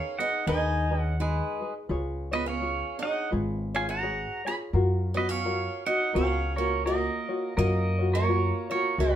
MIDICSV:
0, 0, Header, 1, 5, 480
1, 0, Start_track
1, 0, Key_signature, 6, "major"
1, 0, Tempo, 709220
1, 1284, Time_signature, 4, 2, 24, 8
1, 6197, End_track
2, 0, Start_track
2, 0, Title_t, "Pedal steel guitar"
2, 0, Program_c, 0, 26
2, 0, Note_on_c, 0, 73, 70
2, 0, Note_on_c, 0, 77, 89
2, 111, Note_off_c, 0, 73, 0
2, 126, Note_on_c, 0, 78, 95
2, 130, Note_on_c, 0, 75, 74
2, 144, Note_off_c, 0, 77, 0
2, 311, Note_off_c, 0, 75, 0
2, 319, Note_off_c, 0, 78, 0
2, 321, Note_on_c, 0, 80, 99
2, 331, Note_on_c, 0, 75, 74
2, 694, Note_off_c, 0, 80, 0
2, 694, Note_on_c, 0, 78, 99
2, 780, Note_off_c, 0, 75, 0
2, 817, Note_off_c, 0, 78, 0
2, 823, Note_on_c, 0, 71, 79
2, 826, Note_on_c, 0, 68, 61
2, 1170, Note_off_c, 0, 71, 0
2, 1172, Note_off_c, 0, 68, 0
2, 1580, Note_on_c, 0, 75, 79
2, 1591, Note_on_c, 0, 71, 62
2, 1671, Note_off_c, 0, 71, 0
2, 1673, Note_off_c, 0, 75, 0
2, 1676, Note_on_c, 0, 77, 87
2, 1687, Note_on_c, 0, 73, 69
2, 2034, Note_off_c, 0, 73, 0
2, 2048, Note_on_c, 0, 78, 91
2, 2065, Note_on_c, 0, 75, 73
2, 2066, Note_off_c, 0, 77, 0
2, 2229, Note_off_c, 0, 78, 0
2, 2238, Note_off_c, 0, 75, 0
2, 2543, Note_on_c, 0, 77, 58
2, 2545, Note_on_c, 0, 80, 73
2, 2628, Note_off_c, 0, 77, 0
2, 2636, Note_off_c, 0, 80, 0
2, 2638, Note_on_c, 0, 78, 69
2, 2643, Note_on_c, 0, 82, 88
2, 2989, Note_off_c, 0, 78, 0
2, 3022, Note_on_c, 0, 80, 65
2, 3029, Note_off_c, 0, 82, 0
2, 3032, Note_on_c, 0, 83, 84
2, 3073, Note_off_c, 0, 80, 0
2, 3082, Note_off_c, 0, 83, 0
2, 3500, Note_on_c, 0, 75, 75
2, 3507, Note_on_c, 0, 71, 62
2, 3589, Note_off_c, 0, 71, 0
2, 3589, Note_off_c, 0, 75, 0
2, 3592, Note_on_c, 0, 77, 89
2, 3597, Note_on_c, 0, 73, 74
2, 3949, Note_off_c, 0, 73, 0
2, 3970, Note_on_c, 0, 78, 94
2, 3975, Note_on_c, 0, 75, 74
2, 3984, Note_off_c, 0, 77, 0
2, 4153, Note_off_c, 0, 75, 0
2, 4162, Note_on_c, 0, 73, 62
2, 4164, Note_on_c, 0, 77, 80
2, 4170, Note_off_c, 0, 78, 0
2, 4434, Note_off_c, 0, 73, 0
2, 4440, Note_on_c, 0, 70, 65
2, 4443, Note_on_c, 0, 73, 74
2, 4616, Note_off_c, 0, 77, 0
2, 4626, Note_off_c, 0, 70, 0
2, 4626, Note_off_c, 0, 73, 0
2, 4640, Note_on_c, 0, 70, 66
2, 4643, Note_on_c, 0, 75, 89
2, 5095, Note_off_c, 0, 70, 0
2, 5124, Note_off_c, 0, 75, 0
2, 5124, Note_on_c, 0, 70, 77
2, 5133, Note_on_c, 0, 75, 100
2, 5479, Note_off_c, 0, 70, 0
2, 5505, Note_on_c, 0, 70, 76
2, 5507, Note_on_c, 0, 73, 97
2, 5522, Note_off_c, 0, 75, 0
2, 5861, Note_off_c, 0, 70, 0
2, 5892, Note_off_c, 0, 73, 0
2, 5896, Note_on_c, 0, 70, 71
2, 5900, Note_on_c, 0, 73, 96
2, 6072, Note_off_c, 0, 70, 0
2, 6083, Note_on_c, 0, 66, 72
2, 6093, Note_off_c, 0, 73, 0
2, 6095, Note_on_c, 0, 70, 88
2, 6197, Note_off_c, 0, 66, 0
2, 6197, Note_off_c, 0, 70, 0
2, 6197, End_track
3, 0, Start_track
3, 0, Title_t, "Ukulele"
3, 0, Program_c, 1, 24
3, 0, Note_on_c, 1, 63, 62
3, 0, Note_on_c, 1, 68, 62
3, 0, Note_on_c, 1, 70, 55
3, 0, Note_on_c, 1, 71, 61
3, 118, Note_off_c, 1, 71, 0
3, 121, Note_off_c, 1, 68, 0
3, 123, Note_off_c, 1, 70, 0
3, 126, Note_on_c, 1, 71, 55
3, 129, Note_on_c, 1, 68, 51
3, 130, Note_off_c, 1, 63, 0
3, 139, Note_on_c, 1, 63, 45
3, 317, Note_off_c, 1, 63, 0
3, 318, Note_off_c, 1, 71, 0
3, 319, Note_off_c, 1, 68, 0
3, 323, Note_on_c, 1, 70, 72
3, 325, Note_on_c, 1, 63, 81
3, 326, Note_on_c, 1, 71, 87
3, 327, Note_on_c, 1, 68, 81
3, 600, Note_off_c, 1, 71, 0
3, 604, Note_off_c, 1, 68, 0
3, 606, Note_off_c, 1, 63, 0
3, 606, Note_off_c, 1, 70, 0
3, 609, Note_on_c, 1, 71, 54
3, 612, Note_on_c, 1, 68, 46
3, 614, Note_on_c, 1, 63, 44
3, 803, Note_off_c, 1, 63, 0
3, 803, Note_off_c, 1, 71, 0
3, 805, Note_off_c, 1, 68, 0
3, 811, Note_on_c, 1, 63, 60
3, 817, Note_on_c, 1, 71, 62
3, 819, Note_on_c, 1, 68, 62
3, 1079, Note_off_c, 1, 71, 0
3, 1086, Note_off_c, 1, 68, 0
3, 1087, Note_on_c, 1, 71, 49
3, 1090, Note_off_c, 1, 63, 0
3, 1094, Note_on_c, 1, 68, 51
3, 1098, Note_on_c, 1, 63, 42
3, 1272, Note_off_c, 1, 71, 0
3, 1280, Note_off_c, 1, 63, 0
3, 1280, Note_off_c, 1, 68, 0
3, 1280, Note_on_c, 1, 71, 76
3, 1282, Note_on_c, 1, 65, 91
3, 1288, Note_on_c, 1, 68, 86
3, 1292, Note_on_c, 1, 73, 92
3, 1557, Note_off_c, 1, 73, 0
3, 1562, Note_off_c, 1, 68, 0
3, 1566, Note_on_c, 1, 73, 51
3, 1568, Note_off_c, 1, 71, 0
3, 1569, Note_off_c, 1, 65, 0
3, 1570, Note_on_c, 1, 68, 46
3, 1582, Note_on_c, 1, 65, 42
3, 1759, Note_off_c, 1, 65, 0
3, 1759, Note_off_c, 1, 68, 0
3, 1759, Note_on_c, 1, 71, 58
3, 1761, Note_off_c, 1, 73, 0
3, 1767, Note_on_c, 1, 65, 59
3, 1767, Note_on_c, 1, 68, 62
3, 1774, Note_on_c, 1, 73, 65
3, 2042, Note_off_c, 1, 73, 0
3, 2047, Note_off_c, 1, 71, 0
3, 2050, Note_on_c, 1, 73, 55
3, 2051, Note_off_c, 1, 68, 0
3, 2052, Note_off_c, 1, 65, 0
3, 2058, Note_on_c, 1, 68, 48
3, 2238, Note_on_c, 1, 71, 74
3, 2239, Note_off_c, 1, 68, 0
3, 2242, Note_off_c, 1, 73, 0
3, 2243, Note_on_c, 1, 65, 80
3, 2247, Note_on_c, 1, 68, 74
3, 2250, Note_on_c, 1, 73, 76
3, 2525, Note_off_c, 1, 73, 0
3, 2527, Note_off_c, 1, 71, 0
3, 2530, Note_off_c, 1, 65, 0
3, 2531, Note_off_c, 1, 68, 0
3, 2533, Note_on_c, 1, 73, 49
3, 2542, Note_on_c, 1, 68, 43
3, 2549, Note_on_c, 1, 65, 41
3, 2716, Note_on_c, 1, 71, 58
3, 2717, Note_off_c, 1, 68, 0
3, 2725, Note_off_c, 1, 73, 0
3, 2725, Note_on_c, 1, 68, 66
3, 2732, Note_on_c, 1, 73, 67
3, 2733, Note_off_c, 1, 65, 0
3, 3002, Note_off_c, 1, 73, 0
3, 3006, Note_off_c, 1, 71, 0
3, 3010, Note_on_c, 1, 73, 48
3, 3011, Note_off_c, 1, 68, 0
3, 3020, Note_on_c, 1, 68, 46
3, 3030, Note_on_c, 1, 65, 43
3, 3201, Note_off_c, 1, 65, 0
3, 3203, Note_on_c, 1, 70, 75
3, 3204, Note_off_c, 1, 73, 0
3, 3206, Note_off_c, 1, 68, 0
3, 3209, Note_on_c, 1, 65, 77
3, 3209, Note_on_c, 1, 66, 72
3, 3214, Note_on_c, 1, 73, 85
3, 3474, Note_off_c, 1, 73, 0
3, 3479, Note_off_c, 1, 66, 0
3, 3482, Note_on_c, 1, 73, 50
3, 3487, Note_on_c, 1, 66, 45
3, 3490, Note_off_c, 1, 70, 0
3, 3491, Note_off_c, 1, 65, 0
3, 3499, Note_on_c, 1, 65, 38
3, 3676, Note_off_c, 1, 65, 0
3, 3680, Note_off_c, 1, 73, 0
3, 3682, Note_off_c, 1, 66, 0
3, 3684, Note_on_c, 1, 65, 57
3, 3684, Note_on_c, 1, 70, 53
3, 3691, Note_on_c, 1, 66, 60
3, 3694, Note_on_c, 1, 73, 57
3, 3961, Note_off_c, 1, 73, 0
3, 3966, Note_off_c, 1, 70, 0
3, 3969, Note_on_c, 1, 73, 57
3, 3970, Note_off_c, 1, 65, 0
3, 3973, Note_off_c, 1, 66, 0
3, 3982, Note_on_c, 1, 66, 50
3, 4148, Note_off_c, 1, 73, 0
3, 4150, Note_on_c, 1, 70, 70
3, 4156, Note_off_c, 1, 66, 0
3, 4159, Note_on_c, 1, 73, 88
3, 4160, Note_on_c, 1, 65, 82
3, 4164, Note_on_c, 1, 66, 76
3, 4436, Note_off_c, 1, 73, 0
3, 4443, Note_off_c, 1, 70, 0
3, 4444, Note_off_c, 1, 66, 0
3, 4444, Note_on_c, 1, 73, 52
3, 4448, Note_off_c, 1, 65, 0
3, 4452, Note_on_c, 1, 66, 42
3, 4455, Note_on_c, 1, 65, 38
3, 4631, Note_on_c, 1, 70, 58
3, 4633, Note_off_c, 1, 65, 0
3, 4635, Note_off_c, 1, 66, 0
3, 4638, Note_off_c, 1, 73, 0
3, 4641, Note_on_c, 1, 65, 58
3, 4643, Note_on_c, 1, 66, 58
3, 4646, Note_on_c, 1, 73, 60
3, 4923, Note_off_c, 1, 66, 0
3, 4923, Note_off_c, 1, 70, 0
3, 4923, Note_off_c, 1, 73, 0
3, 4928, Note_off_c, 1, 65, 0
3, 4931, Note_on_c, 1, 73, 53
3, 4932, Note_on_c, 1, 66, 52
3, 4943, Note_on_c, 1, 65, 46
3, 5115, Note_off_c, 1, 65, 0
3, 5117, Note_off_c, 1, 66, 0
3, 5119, Note_off_c, 1, 73, 0
3, 5121, Note_on_c, 1, 70, 78
3, 5123, Note_on_c, 1, 65, 79
3, 5125, Note_on_c, 1, 66, 78
3, 5127, Note_on_c, 1, 73, 86
3, 5397, Note_off_c, 1, 73, 0
3, 5405, Note_on_c, 1, 73, 49
3, 5408, Note_off_c, 1, 66, 0
3, 5408, Note_off_c, 1, 70, 0
3, 5409, Note_off_c, 1, 65, 0
3, 5416, Note_on_c, 1, 66, 46
3, 5423, Note_on_c, 1, 65, 46
3, 5600, Note_off_c, 1, 65, 0
3, 5601, Note_off_c, 1, 66, 0
3, 5601, Note_off_c, 1, 73, 0
3, 5605, Note_on_c, 1, 70, 67
3, 5608, Note_on_c, 1, 65, 78
3, 5609, Note_on_c, 1, 66, 82
3, 5614, Note_on_c, 1, 73, 80
3, 5877, Note_off_c, 1, 73, 0
3, 5885, Note_on_c, 1, 73, 51
3, 5886, Note_off_c, 1, 66, 0
3, 5890, Note_off_c, 1, 70, 0
3, 5891, Note_off_c, 1, 65, 0
3, 5894, Note_on_c, 1, 66, 53
3, 5902, Note_on_c, 1, 65, 48
3, 6075, Note_off_c, 1, 66, 0
3, 6078, Note_on_c, 1, 70, 58
3, 6080, Note_off_c, 1, 73, 0
3, 6084, Note_off_c, 1, 65, 0
3, 6087, Note_on_c, 1, 66, 62
3, 6088, Note_on_c, 1, 73, 63
3, 6197, Note_off_c, 1, 66, 0
3, 6197, Note_off_c, 1, 70, 0
3, 6197, Note_off_c, 1, 73, 0
3, 6197, End_track
4, 0, Start_track
4, 0, Title_t, "Steel-string acoustic guitar"
4, 0, Program_c, 2, 25
4, 0, Note_on_c, 2, 61, 74
4, 132, Note_off_c, 2, 61, 0
4, 137, Note_on_c, 2, 63, 77
4, 312, Note_off_c, 2, 63, 0
4, 320, Note_on_c, 2, 63, 85
4, 659, Note_off_c, 2, 63, 0
4, 659, Note_on_c, 2, 61, 85
4, 775, Note_off_c, 2, 61, 0
4, 813, Note_on_c, 2, 56, 59
4, 1165, Note_off_c, 2, 56, 0
4, 1576, Note_on_c, 2, 59, 64
4, 1663, Note_off_c, 2, 59, 0
4, 1667, Note_on_c, 2, 61, 74
4, 2020, Note_off_c, 2, 61, 0
4, 2023, Note_on_c, 2, 63, 75
4, 2216, Note_off_c, 2, 63, 0
4, 2535, Note_on_c, 2, 65, 61
4, 2623, Note_off_c, 2, 65, 0
4, 2631, Note_on_c, 2, 66, 77
4, 2985, Note_off_c, 2, 66, 0
4, 3028, Note_on_c, 2, 68, 78
4, 3078, Note_off_c, 2, 68, 0
4, 3480, Note_on_c, 2, 59, 69
4, 3579, Note_off_c, 2, 59, 0
4, 3579, Note_on_c, 2, 61, 78
4, 3966, Note_off_c, 2, 61, 0
4, 3968, Note_on_c, 2, 63, 83
4, 4149, Note_off_c, 2, 63, 0
4, 4170, Note_on_c, 2, 61, 75
4, 4455, Note_on_c, 2, 58, 68
4, 4620, Note_off_c, 2, 61, 0
4, 4633, Note_off_c, 2, 58, 0
4, 4651, Note_on_c, 2, 58, 72
4, 5100, Note_off_c, 2, 58, 0
4, 5134, Note_on_c, 2, 58, 87
4, 5485, Note_off_c, 2, 58, 0
4, 5515, Note_on_c, 2, 58, 81
4, 5867, Note_off_c, 2, 58, 0
4, 5893, Note_on_c, 2, 58, 78
4, 6071, Note_off_c, 2, 58, 0
4, 6092, Note_on_c, 2, 54, 82
4, 6197, Note_off_c, 2, 54, 0
4, 6197, End_track
5, 0, Start_track
5, 0, Title_t, "Upright bass"
5, 0, Program_c, 3, 32
5, 316, Note_on_c, 3, 39, 100
5, 942, Note_off_c, 3, 39, 0
5, 1281, Note_on_c, 3, 37, 92
5, 1906, Note_off_c, 3, 37, 0
5, 2250, Note_on_c, 3, 32, 96
5, 2872, Note_off_c, 3, 32, 0
5, 3203, Note_on_c, 3, 42, 91
5, 3827, Note_off_c, 3, 42, 0
5, 4163, Note_on_c, 3, 37, 91
5, 4787, Note_off_c, 3, 37, 0
5, 5125, Note_on_c, 3, 42, 100
5, 5748, Note_off_c, 3, 42, 0
5, 6079, Note_on_c, 3, 37, 90
5, 6197, Note_off_c, 3, 37, 0
5, 6197, End_track
0, 0, End_of_file